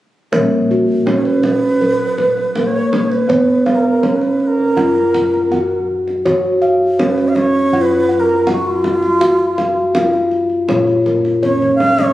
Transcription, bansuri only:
1.15 1.23 C#5 medium
1.22 2.68 B4 loud
2.67 3.13 C#5 medium
3.11 3.76 B4 medium
3.75 4.18 A#4 medium
4.17 4.49 B4 medium
4.47 5.86 A#4 medium
7.08 7.30 B4 medium
7.28 7.37 F5 medium
7.35 7.83 C#5 loud
7.82 8.21 B4 loud
8.20 8.51 A#4 medium
8.52 8.69 F#4 medium
8.67 10.12 F4 medium
11.43 11.74 C#5 medium
11.75 12.05 F5 loud
12.04 12.13 C#5 medium

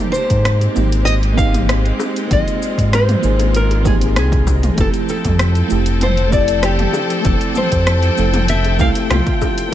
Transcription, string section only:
0.00 4.74 G#3 medium
0.00 4.74 C4 medium
0.00 2.27 G4 medium
2.30 4.75 F4 medium
4.78 9.69 F3 medium
4.78 9.69 C4 medium
4.78 9.69 A4 loud
4.78 9.74 G5 medium

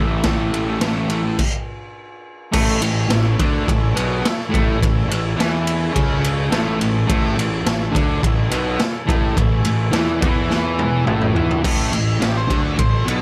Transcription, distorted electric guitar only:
0.00 0.22 A2 medium
0.00 0.11 E3 medium
0.08 0.25 A3 medium
0.12 0.24 E3 soft
0.23 0.80 A2 medium
0.23 0.69 E3 medium
0.23 0.64 A3 loud
0.66 0.85 A3 medium
0.70 0.82 E3 medium
0.82 1.07 A2 medium
0.82 1.09 E3 loud
0.86 1.12 A3 loud
1.08 1.36 A2 medium
1.08 1.23 E3 medium
1.13 1.22 A3 medium
1.23 muted distorted electric guitar stroke medium
2.52 2.80 A2 medium
2.52 2.81 A3 loud
2.82 3.04 A2 medium
3.08 3.32 A2 medium
3.40 3.67 D3 medium
3.40 3.67 D4 loud
3.67 3.90 A2 medium
3.95 4.23 B2 medium
3.95 4.23 B3 loud
4.23 muted distorted electric guitar stroke medium
4.49 4.78 A2 medium
4.49 4.79 A3 loud
4.79 5.03 A2 medium
5.08 5.31 A2 medium
5.36 5.92 E3 loud
5.36 5.94 E4 loud
5.93 6.49 C#3 medium
5.93 6.50 C#4 medium
6.50 6.78 A2 medium
6.50 6.79 A3 loud
6.79 7.02 A2 medium
7.07 7.34 A2 medium
7.07 7.35 A3 loud
7.36 7.59 A2 medium
7.64 7.87 A2 medium
7.92 8.20 D3 medium
7.92 8.21 D4 loud
8.22 8.45 A2 medium
8.49 8.77 B2 medium
8.49 8.79 B3 loud
8.78 muted distorted electric guitar stroke medium
9.06 9.34 A2 loud
9.06 9.35 A3 loud
9.36 9.59 A2 medium
9.65 9.87 A2 medium
9.91 10.20 E3 medium
9.91 10.20 E4 loud
10.21 11.06 E3 medium
10.21 11.07 E4 loud
11.06 11.34 A2 loud
11.06 11.35 A3 loud
11.34 11.62 E3 medium
11.34 11.63 E4 medium
11.62 11.91 A2 medium
11.62 11.92 A3 loud
11.92 12.16 A2 medium
12.19 12.43 A2 medium
12.48 12.76 D3 medium
12.48 12.78 D4 medium
12.76 13.00 A2 medium
13.04 13.22 B2 medium
13.04 13.22 B3 medium

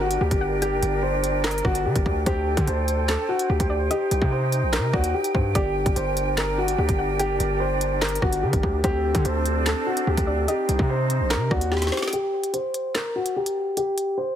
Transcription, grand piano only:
0.01 0.20 F#4 medium
0.21 0.60 G4 medium
0.62 1.01 G4 loud
1.03 1.41 C5 medium
1.44 1.64 A#4 medium
1.65 1.84 F#4 medium
1.85 2.24 G4 medium
2.27 2.65 G4 loud
2.68 3.06 C5 medium
3.09 3.28 A4 medium
3.29 3.48 F#4 medium
3.50 3.88 G4 medium
3.91 4.29 G4 loud
4.32 4.71 C5 medium
4.73 4.92 A#4 medium
4.93 5.13 F#4 medium
5.14 5.53 G4 medium
5.56 5.94 G4 loud
5.96 6.35 C5 medium
6.37 6.57 A#4 medium
6.58 6.77 F#4 medium
6.79 7.17 G4 medium
7.19 7.58 G4 loud
7.60 7.99 C5 medium
8.02 8.21 A#4 medium
8.22 8.42 F#4 medium
8.43 8.81 G4 medium
8.84 9.23 G4 loud
9.25 9.64 C5 medium
9.67 9.86 A4 medium
9.86 10.06 F#4 medium
10.07 10.46 G4 medium
10.48 10.87 G4 medium
10.90 11.28 C5 medium
11.30 11.50 A#4 medium
11.51 11.70 F#4 medium
11.72 12.10 G4 medium
12.13 12.52 G4 loud
12.53 12.92 C5 medium
12.95 13.14 A#4 medium
13.16 13.35 F#4 medium
13.36 13.75 G4 medium
13.77 14.16 G4 loud
14.18 14.36 C5 medium

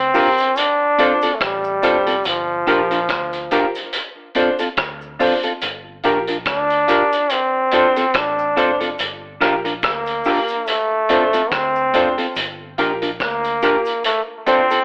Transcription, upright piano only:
0.14 0.30 F4 medium
0.14 0.30 G4 medium
0.14 0.30 A#4 loud
0.99 1.14 D4 medium
0.99 1.15 F4 medium
0.99 1.15 C5 loud
1.82 1.98 D4 medium
1.82 1.98 F4 medium
1.82 1.99 C5 loud
2.67 2.83 F4 medium
2.67 2.83 G4 medium
2.67 2.83 A#4 loud
3.51 3.67 F4 medium
3.51 3.67 G4 medium
3.51 3.68 A#4 loud
4.35 4.51 D4 medium
4.35 4.51 F4 medium
4.35 4.52 C5 medium
5.19 5.35 D4 medium
5.19 5.35 F4 medium
5.19 5.36 C5 loud
6.04 6.20 F4 medium
6.04 6.20 G4 medium
6.04 6.20 A#4 loud
6.88 7.04 F4 medium
6.88 7.04 G4 medium
6.88 7.04 A#4 medium
7.72 7.88 D4 medium
7.72 7.88 F4 medium
7.72 7.88 C5 loud
8.56 8.72 D4 medium
8.56 8.73 F4 medium
8.56 8.73 C5 loud
9.41 9.57 F4 medium
9.41 9.57 G4 medium
9.41 9.57 A#4 loud
10.25 10.41 F4 medium
10.25 10.41 G4 medium
10.25 10.42 A#4 medium
11.09 11.25 D4 medium
11.09 11.25 F4 medium
11.09 11.26 C5 loud
11.94 12.09 D4 medium
11.94 12.10 F4 medium
11.94 12.10 C5 loud
12.78 12.94 F4 medium
12.78 12.94 G4 medium
12.78 12.94 A#4 loud
13.63 13.78 F4 medium
13.63 13.78 G4 medium
13.63 13.79 A#4 loud
14.47 14.62 D4 medium
14.47 14.62 F4 medium
14.47 14.63 C5 loud

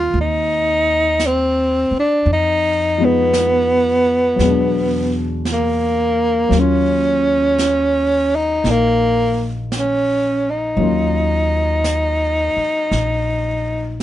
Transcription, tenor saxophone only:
0.00 0.15 F4 medium
0.20 1.28 D#4 medium
1.27 1.95 C4 medium
1.99 2.29 D4 medium
2.33 3.07 D#4 medium
3.05 5.31 B3 medium
5.53 6.61 A#3 medium
6.59 8.37 C#4 medium
8.35 8.72 D#4 medium
8.71 9.56 A#3 medium
9.78 10.52 C#4 medium
10.50 14.03 D#4 medium

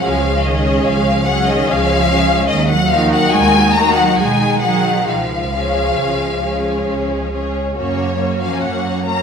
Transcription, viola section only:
0.03 0.43 G#3 medium
0.03 0.43 C#4 medium
0.45 1.25 G#3 medium
0.45 1.25 C#4 medium
1.27 2.06 G#3 medium
1.27 2.06 C#4 medium
2.08 2.48 G#3 medium
2.08 2.48 C#4 medium
2.91 3.74 D#3 medium
2.91 3.74 D#4 medium
3.75 4.17 D#3 medium
3.75 4.18 D#4 medium
4.19 4.62 D#3 medium
4.19 4.62 D#4 medium
4.65 5.08 D#3 medium
4.65 5.08 D#4 medium
5.54 6.40 G#3 medium
5.54 6.40 C#4 medium
6.43 7.30 G#3 soft
6.43 7.30 C#4 medium
7.32 7.75 G#3 soft
7.32 7.75 C#4 medium
7.76 8.19 A#3 medium
7.76 8.19 C#4 soft
8.22 9.06 A#3 medium
8.22 9.06 C#4 medium
9.08 9.22 A#3 medium
9.08 9.22 C#4 medium

